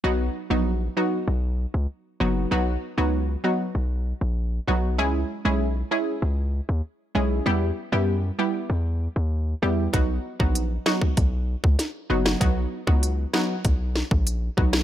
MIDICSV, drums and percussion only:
0, 0, Header, 1, 2, 480
1, 0, Start_track
1, 0, Key_signature, 5, "major"
1, 0, Tempo, 618557
1, 30, Time_signature, 4, 2, 24, 8
1, 11511, End_track
2, 0, Start_track
2, 0, Title_t, "Drums"
2, 7710, Note_on_c, 9, 36, 108
2, 7710, Note_on_c, 9, 42, 76
2, 7788, Note_off_c, 9, 36, 0
2, 7788, Note_off_c, 9, 42, 0
2, 8070, Note_on_c, 9, 36, 92
2, 8147, Note_off_c, 9, 36, 0
2, 8190, Note_on_c, 9, 42, 77
2, 8267, Note_off_c, 9, 42, 0
2, 8427, Note_on_c, 9, 37, 93
2, 8428, Note_on_c, 9, 38, 116
2, 8504, Note_off_c, 9, 37, 0
2, 8506, Note_off_c, 9, 38, 0
2, 8548, Note_on_c, 9, 36, 89
2, 8625, Note_off_c, 9, 36, 0
2, 8669, Note_on_c, 9, 42, 59
2, 8670, Note_on_c, 9, 36, 88
2, 8746, Note_off_c, 9, 42, 0
2, 8748, Note_off_c, 9, 36, 0
2, 9031, Note_on_c, 9, 36, 96
2, 9108, Note_off_c, 9, 36, 0
2, 9148, Note_on_c, 9, 38, 69
2, 9150, Note_on_c, 9, 42, 77
2, 9226, Note_off_c, 9, 38, 0
2, 9228, Note_off_c, 9, 42, 0
2, 9510, Note_on_c, 9, 37, 93
2, 9512, Note_on_c, 9, 38, 114
2, 9588, Note_off_c, 9, 37, 0
2, 9590, Note_off_c, 9, 38, 0
2, 9630, Note_on_c, 9, 36, 104
2, 9630, Note_on_c, 9, 42, 73
2, 9708, Note_off_c, 9, 36, 0
2, 9708, Note_off_c, 9, 42, 0
2, 9990, Note_on_c, 9, 36, 91
2, 10068, Note_off_c, 9, 36, 0
2, 10110, Note_on_c, 9, 42, 76
2, 10188, Note_off_c, 9, 42, 0
2, 10348, Note_on_c, 9, 37, 93
2, 10350, Note_on_c, 9, 38, 119
2, 10426, Note_off_c, 9, 37, 0
2, 10427, Note_off_c, 9, 38, 0
2, 10589, Note_on_c, 9, 42, 62
2, 10590, Note_on_c, 9, 36, 85
2, 10667, Note_off_c, 9, 42, 0
2, 10668, Note_off_c, 9, 36, 0
2, 10829, Note_on_c, 9, 38, 65
2, 10907, Note_off_c, 9, 38, 0
2, 10951, Note_on_c, 9, 36, 96
2, 11028, Note_off_c, 9, 36, 0
2, 11071, Note_on_c, 9, 42, 80
2, 11149, Note_off_c, 9, 42, 0
2, 11311, Note_on_c, 9, 36, 81
2, 11389, Note_off_c, 9, 36, 0
2, 11431, Note_on_c, 9, 37, 94
2, 11432, Note_on_c, 9, 38, 116
2, 11508, Note_off_c, 9, 37, 0
2, 11510, Note_off_c, 9, 38, 0
2, 11511, End_track
0, 0, End_of_file